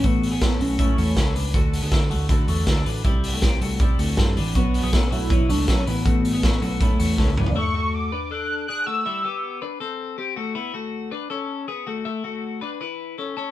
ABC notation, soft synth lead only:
X:1
M:4/4
L:1/8
Q:1/4=160
K:A
V:1 name="Soft synth lead"
B,3 C C3 z | z8 | z8 | B,3 E2 D C B,- |
B,6 z2 | c'2 d'2 f'2 f' e'- | e'3 z4 z | z8 |
z8 |]